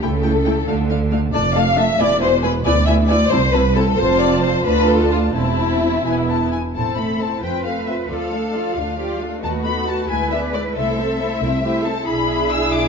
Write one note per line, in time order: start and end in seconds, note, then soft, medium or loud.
0.02 0.60 C#2 medium
0.02 0.60 C#3 medium
0.02 0.11 A3 medium
0.02 0.11 E4 soft
0.02 1.12 A4 medium
0.02 0.10 G5 medium
0.23 0.32 A3 soft
0.23 0.32 E4 soft
0.23 0.31 G5 soft
0.45 0.53 A3 soft
0.45 0.53 E4 medium
0.45 0.53 G5 medium
0.68 1.26 D2 medium
0.68 1.26 D3 medium
0.68 0.76 A3 medium
0.68 0.76 D4 medium
0.68 0.76 F5 medium
0.90 0.98 A3 soft
0.90 0.98 D4 soft
0.90 0.98 F5 soft
1.11 1.19 A3 medium
1.11 1.19 D4 medium
1.11 1.19 F5 medium
1.33 1.91 F1 medium
1.33 1.91 F2 medium
1.33 1.41 A3 medium
1.33 1.41 D4 medium
1.33 1.53 D5 medium
1.33 1.42 A5 medium
1.55 1.64 A3 medium
1.55 1.64 D4 medium
1.55 1.77 F5 medium
1.55 1.63 A5 medium
1.77 1.85 A3 medium
1.77 1.85 D4 medium
1.77 1.99 E5 medium
1.77 1.85 A5 medium
1.99 2.57 E1 medium
1.99 2.58 E2 medium
1.99 2.08 B3 medium
1.99 2.08 E4 medium
1.99 2.21 D5 loud
1.99 2.07 G#5 medium
2.20 2.29 B3 medium
2.20 2.29 E4 medium
2.20 2.43 C5 medium
2.20 2.28 G#5 medium
2.42 2.52 B3 medium
2.42 2.52 E4 medium
2.42 2.51 B4 medium
2.42 2.50 G#5 medium
2.64 3.23 D2 medium
2.64 3.24 D2 medium
2.64 2.74 B3 medium
2.64 2.74 E4 medium
2.64 2.86 D5 loud
2.64 2.72 G#5 medium
2.86 2.96 B3 medium
2.86 2.96 E4 medium
2.86 2.94 E5 medium
2.86 2.95 G#5 medium
3.08 3.17 B3 medium
3.08 3.17 E4 medium
3.08 3.31 D5 medium
3.08 3.16 G#5 medium
3.30 3.90 C2 medium
3.30 3.40 C4 medium
3.30 3.40 E4 medium
3.30 3.53 C5 loud
3.30 3.39 A5 medium
3.52 3.62 C4 medium
3.52 3.62 E4 medium
3.52 3.75 B4 medium
3.52 3.61 A5 medium
3.75 3.84 C4 medium
3.75 3.83 E4 medium
3.75 3.97 A4 medium
3.75 3.83 A5 medium
3.97 4.62 F1 medium
3.97 4.62 F2 medium
3.97 4.62 C4 medium
3.97 4.62 F4 medium
3.97 4.20 C5 loud
3.97 4.61 A5 medium
4.19 4.42 D5 medium
4.42 4.65 C5 medium
4.65 5.35 D2 medium
4.65 5.35 D4 medium
4.65 5.34 F4 medium
4.65 4.88 B4 loud
4.65 5.33 A5 medium
4.88 5.11 A4 medium
5.11 5.19 F4 medium
5.34 6.04 E1 medium
5.34 6.04 E2 medium
5.34 6.05 C4 medium
5.34 6.49 E4 medium
5.34 6.04 E4 medium
5.34 6.04 A5 soft
6.05 6.53 E1 medium
6.05 6.54 E2 medium
6.05 6.55 B3 medium
6.05 6.53 E4 medium
6.05 6.13 G#5 medium
6.29 6.51 A5 medium
6.52 6.60 G#5 medium
6.75 7.32 A1 soft
6.75 6.96 C4 soft
6.75 6.96 E4 soft
6.75 7.39 A4 soft
6.75 6.96 C5 soft
6.75 6.96 A5 medium
6.97 7.20 A3 soft
6.97 7.20 C4 soft
6.97 7.20 A4 soft
6.97 7.20 E5 soft
6.97 7.20 B5 medium
7.21 7.42 C4 soft
7.21 7.43 E4 soft
7.21 7.41 C5 soft
7.21 7.43 A5 medium
7.42 7.99 F2 soft
7.42 7.64 C4 soft
7.42 7.64 F4 soft
7.42 8.10 B4 soft
7.42 7.63 C5 soft
7.42 7.65 G5 medium
7.65 7.87 A3 soft
7.65 7.86 C4 soft
7.65 7.88 A4 soft
7.65 7.87 F5 soft
7.65 7.88 F5 soft
7.86 8.09 C4 soft
7.86 8.09 F4 soft
7.86 8.09 C5 soft
7.86 7.94 E5 soft
8.09 8.66 D2 soft
8.09 8.30 F3 soft
8.09 8.30 F4 soft
8.09 8.76 A4 soft
8.09 8.30 D5 soft
8.09 9.18 F5 soft
8.31 8.54 A3 soft
8.31 8.54 D4 soft
8.31 8.54 A4 soft
8.31 8.54 F5 soft
8.54 8.77 F3 soft
8.54 8.77 F4 soft
8.54 8.76 D5 soft
8.76 9.32 D2 soft
8.76 8.99 A3 soft
8.76 8.99 D4 soft
8.76 8.99 F4 soft
8.76 8.98 A4 soft
8.76 8.98 F5 soft
8.97 9.19 F3 soft
8.97 9.18 F4 soft
8.97 9.19 F4 soft
8.97 9.20 G4 soft
8.97 9.18 D5 soft
9.20 9.42 A3 soft
9.20 9.43 D4 soft
9.20 9.43 F4 soft
9.20 9.42 A4 soft
9.20 9.42 F5 soft
9.42 9.99 D#2 medium
9.42 9.64 A3 soft
9.42 9.63 D#4 soft
9.42 10.08 F#4 medium
9.42 9.64 F#4 soft
9.42 9.63 B4 soft
9.42 9.51 A5 medium
9.64 9.88 B3 soft
9.64 9.88 D#4 soft
9.64 9.87 F#4 soft
9.64 9.87 A4 soft
9.64 9.87 B5 medium
9.86 10.10 A3 soft
9.86 10.09 D#4 soft
9.86 10.10 F#4 soft
9.86 10.08 B4 soft
9.86 10.09 A5 medium
10.09 10.65 D2 soft
10.09 10.31 G#3 soft
10.09 10.31 E4 soft
10.09 10.30 B4 soft
10.09 10.76 B4 medium
10.09 10.31 G#5 medium
10.31 10.54 B3 soft
10.31 10.54 D4 soft
10.31 10.54 G#4 soft
10.31 10.54 D5 soft
10.31 10.39 E5 medium
10.53 10.76 G#3 soft
10.53 10.75 E4 soft
10.53 10.76 B4 soft
10.53 10.61 D5 medium
10.76 11.31 C2 medium
10.76 10.96 A3 soft
10.76 10.97 E4 soft
10.76 11.42 A4 medium
10.76 10.96 C5 soft
10.76 10.96 E5 soft
10.76 11.83 E5 medium
10.98 11.20 C4 soft
10.98 11.20 A4 soft
10.98 11.19 C5 soft
11.20 11.42 A3 soft
11.20 11.42 E4 soft
11.20 11.41 C5 soft
11.20 11.42 E5 soft
11.42 11.96 C2 medium
11.42 11.63 C4 soft
11.42 11.63 E4 medium
11.42 11.64 A4 soft
11.42 11.62 C5 soft
11.63 11.84 A3 soft
11.63 11.84 E4 soft
11.63 11.85 G4 medium
11.63 11.83 C5 soft
11.63 11.84 E5 soft
11.84 12.08 C4 soft
11.84 12.07 A4 soft
11.84 12.07 A4 medium
11.84 12.07 C5 soft
11.84 12.07 A5 medium
12.07 12.88 B1 medium
12.07 12.88 D4 medium
12.07 12.88 E4 medium
12.07 12.88 G#4 medium
12.07 12.88 E5 medium
12.07 12.50 B5 medium
12.51 12.72 E6 medium
12.72 12.88 D6 medium